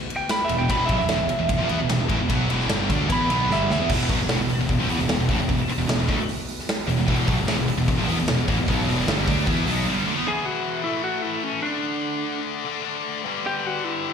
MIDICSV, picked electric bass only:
0, 0, Header, 1, 3, 480
1, 0, Start_track
1, 0, Tempo, 398142
1, 849, Time_signature, 4, 2, 24, 8
1, 17039, End_track
2, 0, Start_track
2, 0, Title_t, "Picked electric bass"
2, 0, Program_c, 0, 34
2, 605, Note_on_c, 0, 28, 84
2, 719, Note_off_c, 0, 28, 0
2, 724, Note_on_c, 0, 28, 81
2, 828, Note_off_c, 0, 28, 0
2, 835, Note_on_c, 0, 28, 98
2, 1066, Note_off_c, 0, 28, 0
2, 1079, Note_on_c, 0, 35, 100
2, 1193, Note_off_c, 0, 35, 0
2, 1201, Note_on_c, 0, 28, 77
2, 1312, Note_off_c, 0, 28, 0
2, 1319, Note_on_c, 0, 28, 97
2, 1437, Note_off_c, 0, 28, 0
2, 1442, Note_on_c, 0, 28, 82
2, 1559, Note_off_c, 0, 28, 0
2, 1700, Note_on_c, 0, 28, 73
2, 1797, Note_off_c, 0, 28, 0
2, 1804, Note_on_c, 0, 28, 84
2, 1920, Note_off_c, 0, 28, 0
2, 1946, Note_on_c, 0, 34, 93
2, 2047, Note_off_c, 0, 34, 0
2, 2055, Note_on_c, 0, 40, 94
2, 2166, Note_off_c, 0, 40, 0
2, 2172, Note_on_c, 0, 28, 89
2, 2285, Note_off_c, 0, 28, 0
2, 2297, Note_on_c, 0, 28, 81
2, 2408, Note_off_c, 0, 28, 0
2, 2418, Note_on_c, 0, 28, 77
2, 2519, Note_off_c, 0, 28, 0
2, 2526, Note_on_c, 0, 33, 104
2, 2639, Note_off_c, 0, 33, 0
2, 2646, Note_on_c, 0, 28, 81
2, 2762, Note_off_c, 0, 28, 0
2, 2768, Note_on_c, 0, 35, 96
2, 2984, Note_off_c, 0, 35, 0
2, 2991, Note_on_c, 0, 28, 100
2, 3227, Note_off_c, 0, 28, 0
2, 3239, Note_on_c, 0, 31, 95
2, 3471, Note_off_c, 0, 31, 0
2, 3498, Note_on_c, 0, 38, 98
2, 3722, Note_off_c, 0, 38, 0
2, 3732, Note_on_c, 0, 40, 92
2, 3958, Note_off_c, 0, 40, 0
2, 3969, Note_on_c, 0, 35, 92
2, 4197, Note_off_c, 0, 35, 0
2, 4208, Note_on_c, 0, 31, 87
2, 4437, Note_off_c, 0, 31, 0
2, 4465, Note_on_c, 0, 38, 104
2, 4568, Note_off_c, 0, 38, 0
2, 4575, Note_on_c, 0, 40, 102
2, 4689, Note_off_c, 0, 40, 0
2, 4699, Note_on_c, 0, 28, 93
2, 4923, Note_off_c, 0, 28, 0
2, 4938, Note_on_c, 0, 35, 96
2, 5051, Note_off_c, 0, 35, 0
2, 5064, Note_on_c, 0, 28, 81
2, 5168, Note_off_c, 0, 28, 0
2, 5175, Note_on_c, 0, 28, 98
2, 5289, Note_off_c, 0, 28, 0
2, 5305, Note_on_c, 0, 28, 93
2, 5415, Note_off_c, 0, 28, 0
2, 5537, Note_on_c, 0, 28, 76
2, 5650, Note_off_c, 0, 28, 0
2, 5657, Note_on_c, 0, 28, 86
2, 5770, Note_off_c, 0, 28, 0
2, 5777, Note_on_c, 0, 34, 101
2, 5891, Note_off_c, 0, 34, 0
2, 5908, Note_on_c, 0, 40, 99
2, 6009, Note_off_c, 0, 40, 0
2, 6016, Note_on_c, 0, 28, 89
2, 6130, Note_off_c, 0, 28, 0
2, 6136, Note_on_c, 0, 28, 78
2, 6251, Note_off_c, 0, 28, 0
2, 6257, Note_on_c, 0, 28, 79
2, 6364, Note_off_c, 0, 28, 0
2, 6371, Note_on_c, 0, 33, 108
2, 6488, Note_off_c, 0, 33, 0
2, 6498, Note_on_c, 0, 28, 82
2, 6611, Note_off_c, 0, 28, 0
2, 6622, Note_on_c, 0, 28, 85
2, 6733, Note_off_c, 0, 28, 0
2, 6966, Note_on_c, 0, 28, 80
2, 7076, Note_off_c, 0, 28, 0
2, 7083, Note_on_c, 0, 28, 82
2, 7203, Note_off_c, 0, 28, 0
2, 7218, Note_on_c, 0, 28, 87
2, 7332, Note_off_c, 0, 28, 0
2, 7342, Note_on_c, 0, 38, 87
2, 7454, Note_off_c, 0, 38, 0
2, 8292, Note_on_c, 0, 28, 90
2, 8408, Note_off_c, 0, 28, 0
2, 8424, Note_on_c, 0, 28, 83
2, 8525, Note_off_c, 0, 28, 0
2, 8533, Note_on_c, 0, 28, 102
2, 8760, Note_off_c, 0, 28, 0
2, 8777, Note_on_c, 0, 35, 105
2, 8891, Note_off_c, 0, 35, 0
2, 8910, Note_on_c, 0, 28, 78
2, 9017, Note_off_c, 0, 28, 0
2, 9039, Note_on_c, 0, 28, 93
2, 9142, Note_off_c, 0, 28, 0
2, 9153, Note_on_c, 0, 28, 87
2, 9259, Note_off_c, 0, 28, 0
2, 9380, Note_on_c, 0, 28, 71
2, 9492, Note_off_c, 0, 28, 0
2, 9507, Note_on_c, 0, 28, 80
2, 9616, Note_off_c, 0, 28, 0
2, 9638, Note_on_c, 0, 34, 100
2, 9741, Note_off_c, 0, 34, 0
2, 9748, Note_on_c, 0, 40, 100
2, 9856, Note_off_c, 0, 40, 0
2, 9873, Note_on_c, 0, 28, 88
2, 9979, Note_off_c, 0, 28, 0
2, 9994, Note_on_c, 0, 28, 83
2, 10087, Note_off_c, 0, 28, 0
2, 10095, Note_on_c, 0, 28, 87
2, 10209, Note_off_c, 0, 28, 0
2, 10228, Note_on_c, 0, 33, 104
2, 10324, Note_off_c, 0, 33, 0
2, 10331, Note_on_c, 0, 28, 84
2, 10447, Note_off_c, 0, 28, 0
2, 10469, Note_on_c, 0, 35, 101
2, 10687, Note_off_c, 0, 35, 0
2, 10703, Note_on_c, 0, 28, 101
2, 10924, Note_off_c, 0, 28, 0
2, 10932, Note_on_c, 0, 31, 95
2, 11158, Note_off_c, 0, 31, 0
2, 11188, Note_on_c, 0, 38, 90
2, 11407, Note_off_c, 0, 38, 0
2, 11423, Note_on_c, 0, 40, 98
2, 11644, Note_off_c, 0, 40, 0
2, 11655, Note_on_c, 0, 35, 100
2, 11879, Note_off_c, 0, 35, 0
2, 17039, End_track
3, 0, Start_track
3, 0, Title_t, "Muted picked electric bass strokes"
3, 1567, Note_on_c, 9, 29, 40
3, 1688, Note_off_c, 9, 29, 0
3, 5431, Note_on_c, 9, 29, 38
3, 5552, Note_off_c, 9, 29, 0
3, 6750, Note_on_c, 9, 29, 38
3, 6862, Note_off_c, 9, 29, 0
3, 6862, Note_on_c, 9, 29, 44
3, 6983, Note_off_c, 9, 29, 0
3, 9271, Note_on_c, 9, 29, 39
3, 9391, Note_off_c, 9, 29, 0
3, 17039, End_track
0, 0, End_of_file